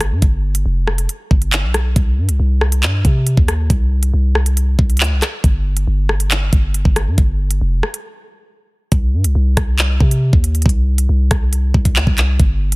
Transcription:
Already playing: 808-style bass G1
0.01 cross-stick, closed hi-hat
0.11 808-style bass G2
0.22 808-style bass G1, kick, closed hi-hat
0.55 closed hi-hat
0.66 808-style bass F1
0.87 cross-stick
0.98 closed hi-hat
1.09 closed hi-hat
1.31 808-style bass G1, kick
1.42 closed hi-hat
1.52 clap, closed hi-hat
1.64 808-style bass B1
1.74 cross-stick, closed hi-hat
1.96 808-style bass C2, kick, closed hi-hat
2.18 808-style bass G2
2.29 808-style bass C2, closed hi-hat
2.40 808-style bass C2
2.61 cross-stick
2.72 closed hi-hat
2.83 808-style bass G2, clap, closed hi-hat
3.05 808-style bass C3, kick, closed hi-hat
3.27 closed hi-hat
3.37 808-style bass D#2, kick
3.48 cross-stick, closed hi-hat
3.70 808-style bass C2, kick, closed hi-hat
4.03 closed hi-hat
4.14 808-style bass C2
4.35 cross-stick
4.46 closed hi-hat
4.57 closed hi-hat
4.79 808-style bass C2, kick
4.90 closed hi-hat
4.97 808-style bass D2, clap, closed hi-hat
5.04 closed hi-hat
5.11 808-style bass C2
5.22 cross-stick, clap, closed hi-hat
5.44 808-style bass G1, kick, closed hi-hat
5.77 closed hi-hat
5.87 808-style bass G1
6.09 cross-stick
6.20 closed hi-hat
6.31 clap, closed hi-hat
6.53 808-style bass G1, kick, closed hi-hat
6.74 closed hi-hat
6.85 808-style bass G1, kick
6.96 cross-stick, closed hi-hat
7.07 808-style bass G2
7.18 808-style bass G1, kick, closed hi-hat
7.51 closed hi-hat
7.61 808-style bass F1
7.83 cross-stick
7.94 closed hi-hat
8.92 808-style bass C2, kick, closed hi-hat
9.14 808-style bass G2
9.24 808-style bass C2, closed hi-hat
9.35 808-style bass C2
9.57 808-style bass C2, kick, cross-stick, closed hi-hat
9.79 clap, closed hi-hat
10.00 808-style bass C3, kick
10.11 closed hi-hat
10.33 808-style bass D#2, kick
10.44 closed hi-hat
10.55 closed hi-hat
10.62 808-style bass C2, kick, closed hi-hat
10.69 closed hi-hat
10.98 closed hi-hat
11.09 808-style bass C2
11.31 808-style bass C2, kick, cross-stick, closed hi-hat
11.53 closed hi-hat
11.74 808-style bass C2, kick
11.85 kick, closed hi-hat
11.96 808-style bass D2, clap
12.07 808-style bass C2, kick
12.18 clap, closed hi-hat
12.40 808-style bass G1, kick, closed hi-hat
12.72 closed hi-hat

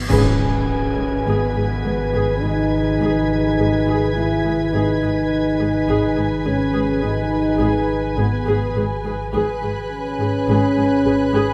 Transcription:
0.09 synth drone G#1, double bass section G#1, cello section G#2, french horn section C#4, glass harmonica G#4 B4 G#5, viola section G#4, violin section B4 G#5 G#6, impact
0.39 cello section G#2, viola section G#4
0.97 cello section G#2, viola section G#4
1.25 double bass section G#1, cello section G#2, french horn section B3, viola section G#4, violin section B6
1.56 cello section G#2, viola section G#4
1.85 double bass section G#1, cello section G#2, viola section G#4
2.14 cello section G#2, viola section G#4
2.42 double bass section G#1, cello section G#2, french horn section D#4, viola section G#4
3.00 double bass section G#1, cello section G#2, viola section G#4
3.58 double bass section G#1, cello section G#2, viola section G#4
3.87 cello section G#2, viola section G#4
4.15 double bass section G#1, cello section G#2, french horn section E4, viola section G#4
4.45 cello section G#2, viola section G#4
4.73 double bass section G#1, synth drone G#1, cello section G#2, french horn section D#4, glass harmonica G#4 B4 G#5, viola section G#4, violin section B4 G#5
5.02 cello section G#2, viola section G#4
5.60 cello section G#2, viola section G#4
5.88 double bass section G#1, cello section G#2, viola section G#4
6.17 cello section G#2, viola section G#4
6.45 double bass section G#1, cello section G#2, french horn section C#4, viola section G#4
6.74 cello section G#2, viola section G#4
7.02 double bass section G#1, cello section G#2, french horn section D#4, viola section G#4
7.59 double bass section G#1, cello section G#2, viola section G#4
8.18 double bass section G#1, cello section G#2, french horn section B3, viola section G#4
8.47 cello section G#2, viola section G#4
8.76 double bass section G#1, cello section G#2, viola section G#4
9.05 cello section G#2, viola section G#4
9.32 double bass section G#1, synth drone G#1, cello section G#2, glass harmonica G#4 B4 G#5, viola section G#4, violin section B4 G#5 B5 F#6
9.62 cello section G#2, viola section G#4
9.91 french horn section C#4
10.20 cello section G#2, viola section G#4
10.48 double bass section G#1, cello section G#2, viola section G#4, violin section G#5
10.77 cello section G#2, viola section G#4
11.05 double bass section G#1, cello section G#2, viola section G#4
11.33 cello section G#2, viola section G#4

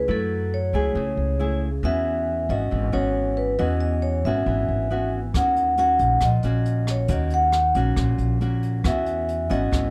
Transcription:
0.08 upright bass F#2, nylon-string guitar F#3 A3 E4, vibraphone A4
0.54 vibraphone C#5
0.73 upright bass C#2, nylon-string guitar A3 E4 G#4
0.95 upright bass C#2, nylon-string guitar C#3, vibraphone C#5
1.17 upright bass C#2
1.39 nylon-string guitar A3 E4 G#4
1.83 upright bass E2, nylon-string guitar E3 B3 C#4 F#4, vibraphone E5
2.49 upright bass G#1, nylon-string guitar B3 C#4 F#4, vibraphone D#5
2.71 upright bass G#1, nylon-string guitar E3
2.92 upright bass G#1, nylon-string guitar B3 C#4 F#4, vibraphone C#5
3.37 vibraphone B4
3.58 upright bass E2, nylon-string guitar E3 B3 C#4 F#4, vibraphone D#5
3.81 vibraphone D#5
4.02 vibraphone C#5
4.25 upright bass G#1, nylon-string guitar B3 C#4 F#4, vibraphone E5
4.46 upright bass G#1, nylon-string guitar E3
4.68 upright bass G#1
4.90 nylon-string guitar B3 C#4 F#4
5.34 upright bass D#2, nylon-string guitar D#3 A#3 C#4 F#4, vibraphone F#5, kick, cross-stick, closed hi-hat
5.56 closed hi-hat
5.78 nylon-string guitar A#3 C#4 F#4, vibraphone F#5, closed hi-hat
5.99 upright bass A#1, closed hi-hat
6.21 upright bass A#1, nylon-string guitar A#2, vibraphone D#5, kick, cross-stick, closed hi-hat
6.43 upright bass A#1, nylon-string guitar A#3 C#4 F#4, closed hi-hat
6.66 closed hi-hat
6.87 vibraphone C#5, cross-stick, closed hi-hat
7.08 upright bass D#2, nylon-string guitar D#3 A#3 C#4 F#4, vibraphone D#5, kick, closed hi-hat
7.30 vibraphone F#5, closed hi-hat
7.52 cross-stick, closed hi-hat
7.75 upright bass A#1, nylon-string guitar A#3 C#4 F#4, closed hi-hat
7.96 upright bass A#1, nylon-string guitar A#2, kick, cross-stick, closed hi-hat
8.18 upright bass A#1, closed hi-hat
8.41 nylon-string guitar A#3 C#4 F#4, closed hi-hat
8.63 closed hi-hat
8.84 upright bass E2, nylon-string guitar E3 B3 C#4 F#4, vibraphone E5, kick, cross-stick, closed hi-hat
9.06 closed hi-hat
9.29 closed hi-hat
9.50 upright bass G#1, nylon-string guitar B3 C#4 F#4, vibraphone D#5, closed hi-hat
9.71 upright bass G#1, nylon-string guitar E3, kick, cross-stick, closed hi-hat

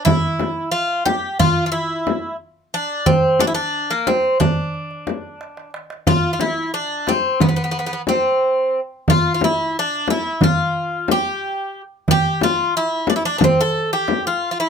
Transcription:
0.05 bouzouki E4, darbuka dum, frame drum
0.40 darbuka tek, frame drum
0.72 bouzouki F4
1.06 bouzouki G4, darbuka tek, frame drum
1.39 bouzouki F4, frame drum, darbuka dum
1.66 bouzouki F4
1.72 bouzouki E4, darbuka ka
2.07 darbuka tek, frame drum
2.74 bouzouki D4
3.06 bouzouki C4, frame drum, darbuka dum
3.40 bouzouki D4, darbuka tek, frame drum
3.47 bouzouki E4
3.55 bouzouki D4
3.90 bouzouki A#3
4.07 bouzouki C4, darbuka tek, frame drum
4.40 bouzouki D4, darbuka dum, frame drum
4.74 darbuka ka
4.91 darbuka ka
5.07 darbuka tek, frame drum
5.41 darbuka tek
5.57 darbuka ka
5.74 darbuka tek
5.90 darbuka ka
6.07 bouzouki F4, frame drum, darbuka dum
6.33 bouzouki F4
6.40 bouzouki E4, darbuka tek, frame drum
6.74 bouzouki D4
7.07 bouzouki C4, darbuka tek, frame drum
7.40 bouzouki B3, frame drum, darbuka dum
7.49 bouzouki B3
7.56 bouzouki B3
7.64 bouzouki B3
7.71 bouzouki B3
7.79 bouzouki B3
7.86 bouzouki B3
7.93 bouzouki B3
8.07 bouzouki C4, darbuka tek, frame drum
9.08 bouzouki F4, darbuka dum, frame drum
9.34 bouzouki F4
9.41 bouzouki E4, darbuka tek, frame drum
9.79 bouzouki D4
10.08 bouzouki E4, darbuka tek, frame drum
10.41 bouzouki F4, darbuka dum, frame drum
11.08 bouzouki G4, darbuka tek, frame drum
12.08 bouzouki G4, darbuka dum, frame drum
12.41 bouzouki F4, darbuka tek, frame drum
12.77 bouzouki E4
13.07 bouzouki D4, darbuka tek, frame drum
13.16 bouzouki E4
13.25 bouzouki D4
13.38 bouzouki D4, frame drum, darbuka dum
13.44 bouzouki C4
13.61 bouzouki A4
13.93 bouzouki G4
14.08 darbuka tek, frame drum
14.27 bouzouki F4
14.51 bouzouki F4
14.60 bouzouki E4

